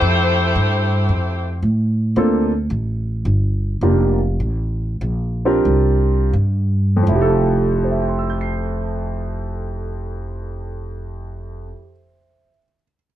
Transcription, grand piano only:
2.17 2.51 A#3 medium
2.17 2.50 C4 medium
2.17 2.51 D4 medium
2.17 2.51 F4 medium
2.17 2.51 A4 medium
3.82 4.18 A#3 medium
3.82 4.18 D4 medium
3.82 4.18 F4 medium
3.82 4.19 G4 medium
3.82 4.19 A#4 medium
5.45 6.30 C4 medium
5.45 6.30 D4 medium
5.45 6.30 F4 medium
5.45 6.31 G4 medium
5.45 6.31 A#4 medium
6.96 11.65 F2 medium
7.03 11.72 F3 medium
7.09 11.78 E4 medium
7.15 11.84 G4 medium
7.22 11.90 A4 medium
7.84 12.49 C5 soft
7.91 12.56 E5 soft
8.00 12.64 G5 soft
8.09 12.73 C6 soft
8.19 12.84 E6 soft
8.30 12.94 G6 soft
8.41 13.06 C7 soft

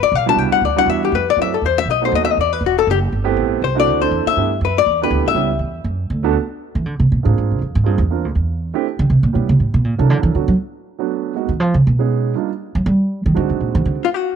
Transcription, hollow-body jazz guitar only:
0.03 0.15 D5 loud
0.15 0.28 F5 loud
0.29 0.38 A5 loud
0.38 0.52 G5 medium
0.52 0.62 F#5 loud
0.65 0.78 D5 medium
0.78 0.88 F#5 loud
0.90 1.02 E5 loud
1.05 1.14 G4 medium
1.15 1.27 B4 medium
1.30 1.39 D5 loud
1.42 1.53 E5 loud
1.54 1.63 A4 medium
1.66 1.78 C5 medium
1.78 1.88 E5 loud
1.91 2.03 D#5 medium
2.05 2.14 C5 medium
2.15 2.22 D#5 medium
2.25 2.32 E5 loud
2.32 2.38 D#5 medium
2.41 2.53 D5 medium
2.53 2.62 B4 medium
2.66 2.78 F#4 medium
2.79 2.88 A4 loud
2.91 2.98 G4 medium
3.64 3.77 C5 medium
3.80 4.01 D5 loud
4.02 4.24 C5 medium
4.27 4.60 E5 loud
4.65 4.77 B4 medium
4.78 5.00 D5 loud
5.03 5.25 B4 medium
5.28 5.60 E5 loud
14.05 14.08 F4 medium
14.14 14.36 F#4 medium

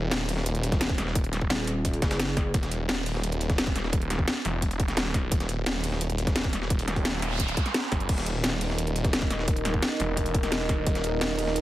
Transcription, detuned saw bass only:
0.00 0.10 D#1 loud
0.11 1.49 D#1 medium
2.54 2.87 D#1 medium
2.89 4.26 D#1 loud
4.45 5.30 E1 loud
5.32 5.65 D#1 loud
5.66 7.04 D#1 medium
7.05 7.56 D#1 loud
7.92 8.08 F#1 loud
8.09 8.42 D#1 medium
8.44 9.81 D#1 medium
10.00 10.60 E1 loud
10.60 10.85 D#1 loud
10.87 11.20 D#1 loud
11.21 11.61 D#1 medium

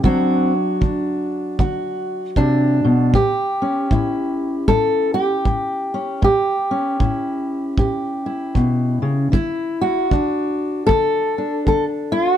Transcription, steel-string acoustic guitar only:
0.03 0.75 D3 medium
0.03 3.10 F#3 soft
0.03 0.52 C4 soft
0.03 0.81 D4 soft
0.03 1.59 F#4 medium
0.81 1.53 D3 medium
0.81 2.35 D4 soft
1.59 2.31 D3 medium
1.59 3.14 F#4 soft
2.37 2.84 C3 medium
2.37 3.14 D4 medium
2.84 3.14 B2 medium
3.14 3.85 A2 medium
3.14 4.68 G4 medium
3.62 5.93 C#4 soft
3.91 4.63 A2 medium
3.91 6.21 E4 soft
4.68 5.40 A2 medium
4.68 5.14 A4 loud
5.14 6.23 G4 medium
5.45 6.17 A2 medium
5.94 6.20 C#4 soft
6.22 6.94 A2 medium
6.22 7.78 G4 medium
6.71 9.30 C#4 soft
7.00 7.72 A2 medium
7.00 8.25 E4 soft
7.78 8.50 A2 medium
7.78 9.30 G4 soft
8.26 9.30 E4 soft
8.55 9.02 B2 medium
9.02 9.31 C#3 medium
9.32 10.04 D3 medium
9.32 10.11 E4 medium
9.81 10.86 F#4 medium
10.11 10.83 D3 medium
10.11 11.37 D4 soft
10.87 11.61 D3 medium
10.87 11.65 A4 loud
11.38 12.37 D4 soft
11.67 12.37 D3 medium
11.67 11.84 A4 medium
12.12 12.32 F4 medium
12.32 12.37 F#4 medium

